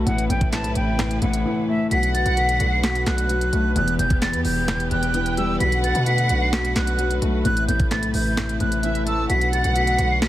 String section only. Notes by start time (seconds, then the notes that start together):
0.07 C3 A3 E4 B4
1.91 D3 A3 F#4 B4
3.76 E3 B3 G4
5.60 D3 A3 F#4
7.45 C3 E4
9.30 D3 F#4